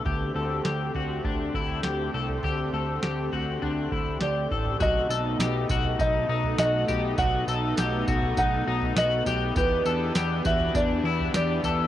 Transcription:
<<
  \new Staff \with { instrumentName = "Felt piano" } { \time 4/4 \key b \phrygian \tempo 4 = 101 r1 | r2. d''4 | dis''2 dis''4 dis''4 | fis''2 fis''4 dis''8. r16 |
b'4. e''8 d''4 d''4 | }
  \new Staff \with { instrumentName = "Clean electric guitar" } { \time 4/4 \key b \phrygian g'8 a'8 g'8 fis'8 d'8 e'8 g'8 a'8 | g'8 a'8 g'8 fis'8 d'8 e'8 g'8 a'8 | fis'8 a'8 g'8 fis'8 dis'8 dis'8 fis'8 g'8 | fis'8 a'8 g'8 fis'8 dis'8 dis'8 fis'8 g'8 |
g'8 a'8 g'8 fis'8 d'8 e'8 g'8 a'8 | }
  \new Staff \with { instrumentName = "Analog synth pad" } { \time 4/4 \key b \phrygian <d a c' g'>1~ | <d a c' g'>1 | <a b dis'>1~ | <a b dis'>1 |
<e d' g'>1 | }
  \new Staff \with { instrumentName = "Analog synth bass" } { \clef bass \time 4/4 \key b \phrygian d,8 d,8 d,8 d,8 d,8 d,8 d,8 c,8 | d,8 d,8 d,8 d,8 d,8 d,8 d,8 a,,8 | b,,8 b,,8 b,,8 b,,8 b,,8 b,,8 b,,8 b,,8 | b,,8 b,,8 b,,8 b,,8 b,,8 b,,8 b,,8 b,,8 |
e,8 e,8 e,8 e,8 e,8 e,8 e,8 e,8 | }
  \new DrumStaff \with { instrumentName = "Drums" } \drummode { \time 4/4 <bd tomfh>4 sn8 tomfh8 <bd tomfh>8 bd16 tomfh16 sn8. tomfh16 | tomfh4 sn8 tomfh8 tomfh8 bd16 tomfh16 sn8 <bd tomfh>16 tomfh16 | <bd tamb tomfh>8 tamb8 <sn tamb>8 <bd tamb tomfh>16 tomfh16 <bd tamb>8. tomfh16 <sn tamb>8 <tamb tomfh>8 | <bd tamb tomfh>8 tamb8 <sn tamb>8 <bd tamb tomfh>16 tomfh16 <bd tamb>8. tomfh16 <sn tamb>8 <tamb tomfh>8 |
<bd tamb tomfh>8 tamb8 <sn tamb>8 <bd tamb tomfh>16 tomfh16 <bd tamb>8. tomfh16 <sn tamb>8 <tamb tomfh>8 | }
>>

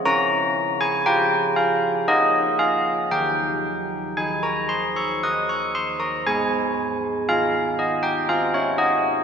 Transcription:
\new Staff \with { instrumentName = "Church bells" } { \time 3/4 \key aes \major \tempo 4 = 59 << { bes''8. aes''16 g''8 f''8 ees''8 f''8 | g''4 aes''16 bes''16 c'''16 des'''16 ees'''16 des'''16 c'''16 bes''16 | aes''4 f''8 ees''16 g''16 f''16 des''16 ees''8 | } \\ { des'4 f'4 <f' bes'>4 | ees4 ees'4 <ees' bes'>4 | aes4 ees'4 <ees' c''>4 | } >> }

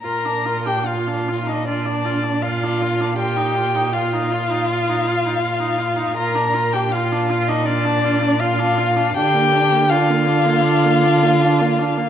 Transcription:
<<
  \new Staff \with { instrumentName = "Violin" } { \time 4/4 \key bes \major \tempo 4 = 80 bes''8. g''16 f''8. ees''16 d''4 f''4 | g''4 f''2. | bes''8. g''16 f''8. ees''16 d''4 f''4 | g''4 f''2. | }
  \new Staff \with { instrumentName = "Violin" } { \time 4/4 \key bes \major bes'8. g'16 f'8. ees'16 d'4 f'4 | g'4 f'2. | bes'8. g'16 f'8. ees'16 d'4 f'4 | g'4 f'2. | }
  \new Staff \with { instrumentName = "Viola" } { \time 4/4 \key bes \major f'16 d'16 f'16 d'16 f'16 d'16 f'16 d'16 f'16 d'16 f'16 d'16 f'16 d'16 f'16 d'16 | f'16 ees'16 f'16 ees'16 f'16 ees'16 f'16 ees'16 f'16 ees'16 f'16 ees'16 f'16 ees'16 f'16 ees'16 | f'16 d'16 f'16 d'16 f'16 d'16 f'16 d'16 f'16 d'16 f'16 d'16 f'16 d'16 f'16 d'16 | d'16 bes16 d'16 bes16 d'16 bes16 d'16 bes16 d'16 bes16 d'16 bes16 d'16 bes16 d'16 bes16 | }
  \new Staff \with { instrumentName = "Cello" } { \clef bass \time 4/4 \key bes \major bes,1~ | bes,1 | bes,1 | d1 | }
>>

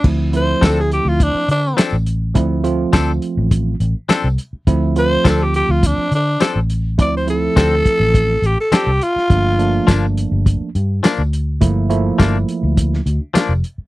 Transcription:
<<
  \new Staff \with { instrumentName = "Tenor saxophone" } { \time 4/4 \key d \minor \tempo 4 = 104 r8 c''8 a'16 gis'16 g'16 f'16 d'8 d'8 r4 | r1 | r8 c''8 a'16 g'16 g'16 f'16 d'8 d'8 r4 | d''16 c''16 a'2 g'16 a'16 g'8 f'8~ |
f'4. r2 r8 | r1 | }
  \new Staff \with { instrumentName = "Clean electric guitar" } { \time 4/4 \key d \minor r4 <f c' d' a'>8 r4. <f c' d' a'>8 r8 | r4 <f c' d' a'>8 r4. <f c' d' a'>8 r8 | r4 <f c' d' a'>8 r4. <f c' d' a'>8 r8 | r4 <f c' d' a'>8 r4. <f c' d' a'>8 r8 |
r4 <f bes d'>8 r4. <f bes d'>8 r8 | r4 <f bes d'>8 r4. <f bes d'>8 r8 | }
  \new Staff \with { instrumentName = "Tine electric piano" } { \time 4/4 \key d \minor <f a c' e'>8 <f a c' e'>2 r4. | <f a c' e'>8 <f a c' f'>2 r4. | <f a c' e'>8 <f a c' f'>2 r4. | <f a c' e'>8 <f a c' e'>2 r4. |
<f a bes d'>8 <f a bes d'>2 r4. | <f a bes e'>8 <f a bes e'>2 r4. | }
  \new Staff \with { instrumentName = "Fingered electric bass" } { \clef bass \time 4/4 \key d \minor d,4 d,8. d,8 r16 d8 r16 a,,8. | d,4 d,8 r16 a,,8. a,,16 r8 c,16 r8 | d,4 d,8. d,8 r16 d8 r16 a,,8. | d,4 d,8 r16 a,,8. a,,16 r8 c,16 r8 |
g,,4 g,,8. g,,8 r16 g,8 r16 d,8. | g,,4 g,,8 r16 d,8. d,16 r8 f,,16 r8 | }
  \new DrumStaff \with { instrumentName = "Drums" } \drummode { \time 4/4 <cymc bd>8 hh8 <hh bd sn tamb>8 hh8 <hh bd>8 hh8 <hh sn tamb>8 hh8 | <hh bd>8 hh8 <hh bd sn tamb>8 hh8 <hh bd>8 hh8 <hh sn tamb>8 hh8 | <hh bd>8 hh8 <hh bd sn tamb>8 hh8 <hh bd>8 hh8 <hh sn tamb>8 hh8 | <hh bd>8 hh8 <hh bd sn tamb>8 <hh bd>8 <hh bd>8 hh8 <hh sn tamb>8 hh16 sn16 |
<hh bd>8 hh8 <hh bd sn tamb>8 hh8 <hh bd>8 hh8 <hh sn tamb>8 hh8 | <hh bd>8 hh8 <hh bd sn tamb>8 hh8 <hh bd>16 sn16 hh8 <hh sn tamb>8 hh8 | }
>>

